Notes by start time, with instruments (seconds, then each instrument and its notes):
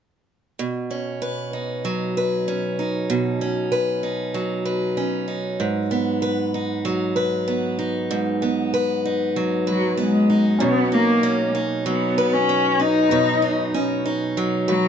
0.59 steel-string acoustic guitar B2
0.91 steel-string acoustic guitar C#4
1.22 steel-string acoustic guitar B4
1.53 steel-string acoustic guitar D#4
1.85 steel-string acoustic guitar F#3
2.17 steel-string acoustic guitar B4
2.48 steel-string acoustic guitar C#4
2.79 steel-string acoustic guitar D#4
3.10 steel-string acoustic guitar B2
3.41 steel-string acoustic guitar C#4
3.72 steel-string acoustic guitar B4
4.03 steel-string acoustic guitar D#4
4.34 steel-string acoustic guitar F#3
4.65 steel-string acoustic guitar B4
4.97 steel-string acoustic guitar C#4
5.28 steel-string acoustic guitar D#4
5.60 steel-string acoustic guitar G#2
5.91 steel-string acoustic guitar B3
6.22 steel-string acoustic guitar B4
6.54 steel-string acoustic guitar D#4
6.85 steel-string acoustic guitar F#3
7.16 steel-string acoustic guitar B4
7.48 steel-string acoustic guitar B3
7.79 steel-string acoustic guitar D#4
8.11 steel-string acoustic guitar G#2
8.42 steel-string acoustic guitar B3
8.74 steel-string acoustic guitar B4
9.06 steel-string acoustic guitar D#4
9.36 steel-string acoustic guitar F#3
9.67 cello F#3, steel-string acoustic guitar B4
9.97 cello G#3, steel-string acoustic guitar B3
10.30 steel-string acoustic guitar D#4
10.59 steel-string acoustic guitar B2, cello B3, felt piano C#4 D#4
10.63 felt piano C#5
10.92 cello A#3, steel-string acoustic guitar D#4
11.23 steel-string acoustic guitar C#4
11.55 steel-string acoustic guitar D#4
11.86 steel-string acoustic guitar F#3, cello B3
12.18 steel-string acoustic guitar B4
12.33 cello C#4
12.49 steel-string acoustic guitar C#4
12.80 steel-string acoustic guitar D#4, cello D#4
13.08 steel-string acoustic guitar B2 B4, felt piano B3 D#4 C#5
13.42 steel-string acoustic guitar D#4
13.74 steel-string acoustic guitar C#4
14.06 steel-string acoustic guitar D#4
14.37 steel-string acoustic guitar F#3
14.68 cello F#3, steel-string acoustic guitar B4